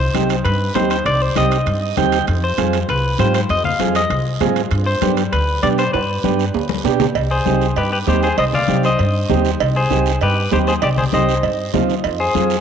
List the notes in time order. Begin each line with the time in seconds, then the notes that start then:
0.00 C5
0.14 C2 C4 D#4 G4, high conga, high timbale, short guiro
0.29 high timbale, short guiro
0.45 G2 B4, high conga, high timbale, long guiro
0.75 D#2 C4 D#4 G4 C5, high conga, high timbale, low timbale, short guiro
0.90 C5, high timbale, short guiro
1.05 C2 D5, high conga, high timbale, long guiro
1.22 C5
1.36 C2 C4 D#4 G4 D#5, high conga, high timbale, short guiro
1.51 high timbale, short guiro
1.66 G2, high conga, high timbale, long guiro
1.82 D#5
1.97 D#2 C4 D#4 G4 G5, high conga, low conga, high timbale, short guiro
2.12 high timbale, short guiro
2.27 F2, high conga, high timbale, long guiro
2.44 C5
2.57 F2 C4 F4 G#4, high conga, high timbale, short guiro
2.73 high timbale, short guiro
2.88 C2 B4, high conga, high timbale, long guiro
3.18 G#2 C4 F4 G4 C5, high conga, high timbale, short guiro
3.34 C5, high timbale, short guiro
3.49 F2 D#5, high conga, high timbale, long guiro
3.64 F5, low conga
3.80 F2 C4 F4 G#4, high conga, high timbale, short guiro
3.95 D#5, high timbale, short guiro
4.10 C2, high conga, high timbale, long guiro
4.40 G#2 C4 F4 G#4, high conga, low conga, high timbale, low timbale, short guiro
4.56 high timbale, short guiro
4.71 G2, high conga, high timbale, long guiro
4.86 C5
5.01 G2 B3 D4 G4, high conga, high timbale, short guiro
5.17 high timbale, short guiro
5.32 D2 B4, high conga, high timbale, long guiro
5.62 B2 B3 D4 G4 D5, high conga, high timbale, short guiro
5.78 C5, high timbale, short guiro
5.93 G2 B4, high conga, high timbale, long guiro
6.23 G2 B3 D4 G4, high conga, short guiro
6.39 short guiro
6.54 D2, high conga, low timbale, long guiro
6.69 high conga
6.84 B2 B3 D4 G4, low timbale, short guiro
7.00 low conga, low timbale, short guiro
7.15 C2, cowbell, high conga, long guiro
7.31 G#4 C5
7.45 C2 C4 D#4 G4, high conga, short guiro
7.61 short guiro
7.76 G2 G4 B4, cowbell, high conga, long guiro
7.92 G4 B4
8.07 D#2 C4 D#4 G4 C5, high conga, low timbale, short guiro
8.23 G#4 C5, short guiro
8.38 C2 C5 D#5, cowbell, high conga, long guiro
8.53 D5 F5, low conga
8.68 C2 C4 D#4 G4, high conga, short guiro
8.83 C5 D#5, short guiro
8.99 G2, cowbell, high conga, long guiro
9.29 D#2 C4 D#4 G4, high conga, low conga, low timbale, short guiro
9.45 short guiro
9.60 C2, cowbell, high conga, long guiro
9.76 G#4 C5
9.90 C2 C4 D#4 G4, high conga, short guiro
10.06 short guiro
10.21 G2 G4 B4, cowbell, high conga, long guiro
10.51 D#2 C4 D#4 G4 C5, high conga, low timbale, short guiro
10.67 G#4 C5, short guiro
10.82 C2 G4 D5, cowbell, high conga, long guiro
10.98 G#4 C5, low conga
11.13 C2 C4 D#4 G4 C5 D#5, high conga, short guiro
11.29 short guiro
11.43 G2, cowbell, high conga, long guiro
11.74 D#2 C4 D#4 F4, high conga, low conga, low timbale, short guiro
11.89 short guiro
12.04 F2, cowbell, high conga, long guiro
12.20 G#4 C5
12.35 F2 C4 F4 G#4, high conga, short guiro
12.50 short guiro